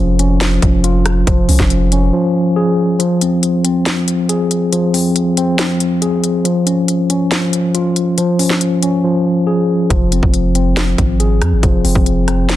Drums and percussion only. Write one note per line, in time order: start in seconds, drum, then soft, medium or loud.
0.19 closed hi-hat medium
0.41 snare loud
0.41 closed hi-hat medium
0.62 kick medium
0.62 closed hi-hat medium
0.84 closed hi-hat medium
1.06 cross-stick medium
1.06 closed hi-hat medium
1.27 kick loud
1.27 closed hi-hat medium
1.49 open hi-hat medium
1.60 kick medium
1.60 snare medium
1.70 closed hi-hat medium
1.92 closed hi-hat medium
3.00 closed hi-hat medium
3.21 closed hi-hat medium
3.43 closed hi-hat medium
3.65 closed hi-hat medium
3.86 snare loud
3.86 closed hi-hat medium
4.08 closed hi-hat medium
4.29 closed hi-hat medium
4.51 closed hi-hat medium
4.73 closed hi-hat medium
4.94 open hi-hat medium
5.16 closed hi-hat medium
5.37 closed hi-hat medium
5.59 snare loud
5.59 closed hi-hat medium
5.80 closed hi-hat medium
6.02 closed hi-hat medium
6.24 closed hi-hat medium
6.45 closed hi-hat medium
6.67 closed hi-hat medium
6.88 closed hi-hat medium
7.10 closed hi-hat medium
7.31 snare loud
7.31 closed hi-hat medium
7.53 closed hi-hat medium
7.75 closed hi-hat medium
7.96 closed hi-hat medium
8.18 closed hi-hat medium
8.39 open hi-hat medium
8.50 snare medium
8.61 closed hi-hat medium
8.83 closed hi-hat medium
9.90 kick loud
9.90 closed hi-hat medium
10.12 closed hi-hat medium
10.23 kick medium
10.34 closed hi-hat medium
10.55 closed hi-hat medium
10.77 snare loud
10.77 closed hi-hat medium
10.98 kick medium
10.98 closed hi-hat medium
11.20 closed hi-hat medium
11.42 cross-stick medium
11.42 closed hi-hat medium
11.63 kick loud
11.63 closed hi-hat medium
11.85 open hi-hat medium
11.95 kick medium
12.06 closed hi-hat medium
12.28 cross-stick medium
12.28 closed hi-hat medium
12.49 snare loud
12.49 closed hi-hat medium